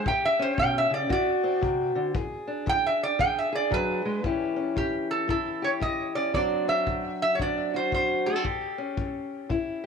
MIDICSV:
0, 0, Header, 1, 4, 480
1, 0, Start_track
1, 0, Tempo, 524476
1, 50, Time_signature, 4, 2, 24, 8
1, 9024, End_track
2, 0, Start_track
2, 0, Title_t, "Resonator guitar played with a steel bar"
2, 0, Program_c, 0, 25
2, 71, Note_on_c, 0, 79, 91
2, 216, Note_off_c, 0, 79, 0
2, 233, Note_on_c, 0, 76, 93
2, 377, Note_off_c, 0, 76, 0
2, 386, Note_on_c, 0, 72, 86
2, 533, Note_off_c, 0, 72, 0
2, 544, Note_on_c, 0, 79, 104
2, 691, Note_off_c, 0, 79, 0
2, 713, Note_on_c, 0, 76, 95
2, 855, Note_off_c, 0, 76, 0
2, 859, Note_on_c, 0, 74, 88
2, 1008, Note_off_c, 0, 74, 0
2, 1029, Note_on_c, 0, 74, 96
2, 1483, Note_off_c, 0, 74, 0
2, 2466, Note_on_c, 0, 79, 113
2, 2610, Note_off_c, 0, 79, 0
2, 2622, Note_on_c, 0, 76, 90
2, 2768, Note_off_c, 0, 76, 0
2, 2776, Note_on_c, 0, 74, 91
2, 2925, Note_off_c, 0, 74, 0
2, 2932, Note_on_c, 0, 79, 102
2, 3083, Note_off_c, 0, 79, 0
2, 3098, Note_on_c, 0, 76, 86
2, 3246, Note_off_c, 0, 76, 0
2, 3253, Note_on_c, 0, 74, 109
2, 3403, Note_off_c, 0, 74, 0
2, 3421, Note_on_c, 0, 71, 103
2, 3878, Note_off_c, 0, 71, 0
2, 4370, Note_on_c, 0, 67, 77
2, 4670, Note_off_c, 0, 67, 0
2, 4674, Note_on_c, 0, 69, 83
2, 4835, Note_off_c, 0, 69, 0
2, 4853, Note_on_c, 0, 69, 77
2, 5162, Note_off_c, 0, 69, 0
2, 5166, Note_on_c, 0, 73, 88
2, 5211, Note_off_c, 0, 73, 0
2, 5330, Note_on_c, 0, 75, 94
2, 5628, Note_off_c, 0, 75, 0
2, 5632, Note_on_c, 0, 74, 81
2, 5796, Note_off_c, 0, 74, 0
2, 5807, Note_on_c, 0, 74, 97
2, 6118, Note_off_c, 0, 74, 0
2, 6121, Note_on_c, 0, 76, 96
2, 6599, Note_off_c, 0, 76, 0
2, 6610, Note_on_c, 0, 76, 103
2, 6724, Note_off_c, 0, 76, 0
2, 6728, Note_on_c, 0, 73, 68
2, 6770, Note_off_c, 0, 73, 0
2, 6788, Note_on_c, 0, 74, 93
2, 7062, Note_off_c, 0, 74, 0
2, 7104, Note_on_c, 0, 72, 89
2, 7260, Note_off_c, 0, 72, 0
2, 7271, Note_on_c, 0, 72, 88
2, 7563, Note_on_c, 0, 69, 73
2, 7574, Note_off_c, 0, 72, 0
2, 8006, Note_off_c, 0, 69, 0
2, 9024, End_track
3, 0, Start_track
3, 0, Title_t, "Steel-string acoustic guitar"
3, 0, Program_c, 1, 25
3, 55, Note_on_c, 1, 45, 76
3, 59, Note_on_c, 1, 67, 71
3, 359, Note_on_c, 1, 61, 66
3, 496, Note_off_c, 1, 45, 0
3, 523, Note_on_c, 1, 47, 69
3, 821, Note_off_c, 1, 47, 0
3, 824, Note_on_c, 1, 49, 72
3, 989, Note_off_c, 1, 61, 0
3, 991, Note_off_c, 1, 67, 0
3, 997, Note_off_c, 1, 49, 0
3, 1001, Note_on_c, 1, 50, 83
3, 1009, Note_on_c, 1, 66, 84
3, 1314, Note_on_c, 1, 60, 69
3, 1448, Note_off_c, 1, 50, 0
3, 1476, Note_on_c, 1, 48, 72
3, 1785, Note_off_c, 1, 48, 0
3, 1789, Note_on_c, 1, 50, 67
3, 1945, Note_off_c, 1, 60, 0
3, 1964, Note_off_c, 1, 50, 0
3, 1965, Note_off_c, 1, 66, 0
3, 1965, Note_on_c, 1, 52, 73
3, 1970, Note_on_c, 1, 68, 72
3, 2264, Note_on_c, 1, 62, 62
3, 2409, Note_off_c, 1, 52, 0
3, 2435, Note_on_c, 1, 52, 84
3, 2884, Note_off_c, 1, 52, 0
3, 2915, Note_off_c, 1, 68, 0
3, 2919, Note_on_c, 1, 52, 91
3, 2926, Note_on_c, 1, 68, 77
3, 3215, Note_off_c, 1, 68, 0
3, 3226, Note_on_c, 1, 68, 72
3, 3366, Note_off_c, 1, 52, 0
3, 3391, Note_on_c, 1, 54, 79
3, 3701, Note_off_c, 1, 54, 0
3, 3710, Note_on_c, 1, 56, 71
3, 3859, Note_off_c, 1, 62, 0
3, 3861, Note_off_c, 1, 68, 0
3, 3871, Note_on_c, 1, 45, 67
3, 3876, Note_off_c, 1, 56, 0
3, 3880, Note_on_c, 1, 52, 59
3, 3887, Note_on_c, 1, 61, 56
3, 3893, Note_on_c, 1, 64, 54
3, 3897, Note_on_c, 1, 67, 64
3, 4165, Note_off_c, 1, 61, 0
3, 4176, Note_on_c, 1, 61, 54
3, 4322, Note_off_c, 1, 45, 0
3, 4354, Note_on_c, 1, 45, 68
3, 4804, Note_off_c, 1, 45, 0
3, 4829, Note_on_c, 1, 45, 76
3, 4830, Note_off_c, 1, 64, 0
3, 4841, Note_on_c, 1, 64, 57
3, 5133, Note_off_c, 1, 67, 0
3, 5144, Note_on_c, 1, 67, 67
3, 5282, Note_off_c, 1, 45, 0
3, 5310, Note_on_c, 1, 45, 78
3, 5618, Note_off_c, 1, 61, 0
3, 5629, Note_on_c, 1, 61, 59
3, 5763, Note_off_c, 1, 45, 0
3, 5782, Note_off_c, 1, 67, 0
3, 5783, Note_off_c, 1, 64, 0
3, 5784, Note_off_c, 1, 61, 0
3, 5798, Note_on_c, 1, 50, 68
3, 5801, Note_off_c, 1, 52, 0
3, 5805, Note_on_c, 1, 54, 59
3, 5812, Note_on_c, 1, 60, 61
3, 5819, Note_on_c, 1, 62, 59
3, 5824, Note_on_c, 1, 66, 61
3, 6103, Note_off_c, 1, 60, 0
3, 6114, Note_on_c, 1, 60, 59
3, 6248, Note_off_c, 1, 50, 0
3, 6279, Note_on_c, 1, 50, 72
3, 6728, Note_off_c, 1, 50, 0
3, 6772, Note_off_c, 1, 62, 0
3, 6777, Note_on_c, 1, 50, 73
3, 6783, Note_on_c, 1, 62, 62
3, 7074, Note_off_c, 1, 66, 0
3, 7085, Note_on_c, 1, 66, 68
3, 7218, Note_off_c, 1, 50, 0
3, 7251, Note_on_c, 1, 50, 77
3, 7555, Note_off_c, 1, 60, 0
3, 7559, Note_on_c, 1, 57, 62
3, 7648, Note_off_c, 1, 57, 0
3, 7648, Note_on_c, 1, 60, 47
3, 7696, Note_off_c, 1, 50, 0
3, 7708, Note_off_c, 1, 54, 0
3, 7716, Note_off_c, 1, 62, 0
3, 7720, Note_on_c, 1, 45, 70
3, 7728, Note_off_c, 1, 66, 0
3, 7732, Note_on_c, 1, 67, 68
3, 7733, Note_off_c, 1, 60, 0
3, 8037, Note_on_c, 1, 61, 58
3, 8171, Note_off_c, 1, 45, 0
3, 8210, Note_on_c, 1, 45, 76
3, 8656, Note_off_c, 1, 45, 0
3, 8689, Note_on_c, 1, 45, 74
3, 8699, Note_on_c, 1, 64, 64
3, 8992, Note_off_c, 1, 67, 0
3, 9024, Note_off_c, 1, 45, 0
3, 9024, Note_off_c, 1, 61, 0
3, 9024, Note_off_c, 1, 64, 0
3, 9024, End_track
4, 0, Start_track
4, 0, Title_t, "Drums"
4, 54, Note_on_c, 9, 36, 80
4, 146, Note_off_c, 9, 36, 0
4, 531, Note_on_c, 9, 36, 80
4, 622, Note_off_c, 9, 36, 0
4, 1009, Note_on_c, 9, 36, 70
4, 1100, Note_off_c, 9, 36, 0
4, 1488, Note_on_c, 9, 36, 69
4, 1580, Note_off_c, 9, 36, 0
4, 1964, Note_on_c, 9, 36, 78
4, 2056, Note_off_c, 9, 36, 0
4, 2445, Note_on_c, 9, 36, 72
4, 2536, Note_off_c, 9, 36, 0
4, 2923, Note_on_c, 9, 36, 71
4, 3015, Note_off_c, 9, 36, 0
4, 3403, Note_on_c, 9, 36, 68
4, 3495, Note_off_c, 9, 36, 0
4, 3882, Note_on_c, 9, 36, 73
4, 3974, Note_off_c, 9, 36, 0
4, 4363, Note_on_c, 9, 36, 67
4, 4454, Note_off_c, 9, 36, 0
4, 4842, Note_on_c, 9, 36, 64
4, 4934, Note_off_c, 9, 36, 0
4, 5322, Note_on_c, 9, 36, 60
4, 5414, Note_off_c, 9, 36, 0
4, 5805, Note_on_c, 9, 36, 65
4, 5896, Note_off_c, 9, 36, 0
4, 6286, Note_on_c, 9, 36, 75
4, 6378, Note_off_c, 9, 36, 0
4, 6768, Note_on_c, 9, 36, 69
4, 6859, Note_off_c, 9, 36, 0
4, 7250, Note_on_c, 9, 36, 60
4, 7342, Note_off_c, 9, 36, 0
4, 7730, Note_on_c, 9, 36, 67
4, 7822, Note_off_c, 9, 36, 0
4, 8213, Note_on_c, 9, 36, 70
4, 8305, Note_off_c, 9, 36, 0
4, 8695, Note_on_c, 9, 36, 60
4, 8786, Note_off_c, 9, 36, 0
4, 9024, End_track
0, 0, End_of_file